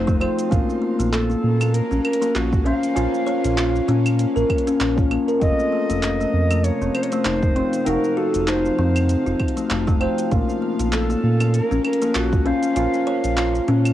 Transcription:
Already playing: F1 F3 C4 F#4 C5 F5
0.07 A3, kick, shaker
0.20 A3 C4 F4 C5, closed hi-hat, claves
0.39 closed hi-hat, shaker
0.50 A#1 A#3 C#4 F4 F5, kick, closed hi-hat, shaker
0.54 A#3
0.70 shaker
0.82 A#3
0.99 A#1 A#3, closed hi-hat, shaker
1.12 A4, clap, closed hi-hat, shaker
1.30 A#3, shaker
1.44 A#2
1.60 A#3, closed hi-hat, claves, shaker
1.74 A#4, closed hi-hat, shaker
1.91 A#1 C#4, shaker
2.04 A#4, closed hi-hat, claves
2.13 closed hi-hat
2.22 A#3, closed hi-hat, shaker
2.35 A#1 F4 F#4, clap, closed hi-hat, shaker
2.53 kick, shaker
2.65 C#4 F4 C5 F5, closed hi-hat
2.83 closed hi-hat, shaker
2.95 A#1 C#4 F4, closed hi-hat, shaker
2.99 A#4
3.14 shaker
3.27 C#5, closed hi-hat
3.44 A#1, closed hi-hat, shaker
3.57 F4, clap, closed hi-hat, shaker
3.76 shaker
3.88 A#2 C#4, closed hi-hat
4.06 closed hi-hat, claves, shaker
4.19 closed hi-hat, shaker
4.36 A#1 A#4, shaker
4.49 A#3, kick, closed hi-hat, claves
4.58 closed hi-hat
4.67 C#4, closed hi-hat, shaker
4.80 A#1 C#4, clap, closed hi-hat, shaker
4.97 C#4 F4 A#4, kick, shaker
5.11 A#3, closed hi-hat, claves
5.28 A#4, closed hi-hat, shaker
5.40 F1 C3 F3 A3 C4 F4 D#5, kick, closed hi-hat, shaker
5.44 A4
5.59 shaker
5.72 A3
5.90 F1 A3, closed hi-hat, shaker
6.03 clap, closed hi-hat, shaker
6.20 A3, shaker
6.34 F2
6.51 A3, closed hi-hat, claves, shaker
6.64 C#5, closed hi-hat, shaker
6.81 F1 C4, shaker
6.95 C5, closed hi-hat, claves
7.03 C#5, closed hi-hat
7.10 A3 C5, closed hi-hat, shaker
7.25 F1 D#4, clap, closed hi-hat, shaker
7.43 kick, shaker
7.55 C4 F4 C5, closed hi-hat
7.73 closed hi-hat, shaker
7.85 F1 C4 D#4 A#4 F5, closed hi-hat, shaker
7.89 F#4
8.04 shaker
8.17 F#4 A4
8.34 F1, closed hi-hat, shaker
8.48 D#4 C5, clap, closed hi-hat, shaker
8.65 shaker
8.79 F2 C4
8.96 closed hi-hat, claves, shaker
9.09 closed hi-hat, shaker
9.26 F1 F4, shaker
9.40 kick, closed hi-hat, claves
9.48 closed hi-hat
9.57 A3, closed hi-hat, shaker
9.70 F1 A3, clap, closed hi-hat, shaker
9.87 A3, kick, shaker
10.00 A3 C4 F4 C5, closed hi-hat, claves
10.18 closed hi-hat, shaker
10.30 A#1 A#3 C#4 F4, kick, closed hi-hat, shaker
10.49 shaker
10.62 A#3
10.79 A#1 A#3, closed hi-hat, shaker
10.92 A4, clap, closed hi-hat, shaker
11.10 A#3, shaker
11.23 A#2
11.40 A#3, closed hi-hat, claves, shaker
11.54 A#4, closed hi-hat, shaker
11.71 A#1 C#4, shaker
11.85 A#4, closed hi-hat, claves
11.93 closed hi-hat
12.02 A#3, closed hi-hat, shaker
12.15 A#1 F4 F#4, clap, closed hi-hat, shaker
12.33 kick, shaker
12.45 C#4 F4 C5 F5, closed hi-hat
12.63 closed hi-hat, shaker
12.75 A#1 C#4 F4 A#4, closed hi-hat, shaker
12.94 shaker
13.07 C#5, closed hi-hat
13.24 A#1, closed hi-hat, shaker
13.37 F4, clap, closed hi-hat, shaker
13.55 shaker
13.68 A#2 C#4, closed hi-hat
13.85 closed hi-hat, claves, shaker

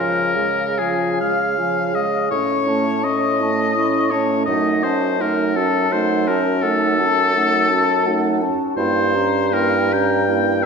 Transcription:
Already playing: C#3 F3 F4 A#4 G#5
0.35 G#3 G#4 F5
0.77 F3 F4 G#4 G#5
1.20 G#3 G#4 F5
1.57 F3 F4 G#5
1.94 G#3 G#4 D#5 F5
2.30 A2 C#4 E4 C#5 C#6
2.67 A3 C#4 A5
3.04 C#4 E4 D#5 C#6
3.41 A3 C#4 A5
3.76 C#4 E4 C#6
4.11 A3 C#4 C#5 A5
4.45 F#2 A3 D#4 D#5 F#5
4.83 C#4 F#4 C5 A5
5.20 A3 D#4 A#4 F#5
5.56 C#4 F#4 A4 A5
5.92 A3 D#4 C5 F#5
6.28 C#4 F#4 A#4 A5
6.62 A3 D#4 A4 F#5
6.99 C#4 F#4 A5
7.35 A3 D#4 F#5
7.68 C#4 A5
7.73 F#4
8.05 A3 D#4 F#5
8.41 C#4 F#4 A5
8.76 G2 A#3 E4 C5 G5
9.15 C#4 G4 A#5
9.52 A#3 E4 A#4 G5
9.91 C#4 G4 G5 A#5
10.28 A#3 E4 G5

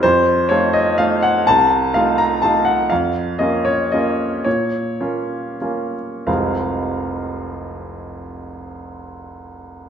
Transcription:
0.03 F2 C5
0.49 A3 D#4 F4 C#5
0.73 D#5
0.98 A3 D#4 F4 F5
1.23 F#5
1.47 C2 A5
1.94 A3 D#4 F4 F5
2.18 A#5
2.42 A3 D#4 F4 A5
2.65 F#5
2.90 F2 F5
3.39 A#3 C#4 F4 D#5
3.65 C#5
3.92 A#3 C#4 F4 D#5
4.44 A#2 C#5
5.01 A#3 C#4 F4
5.61 A#3 C#4 F4
6.27 F1 C2 F3 G#3 C4 F4 F5

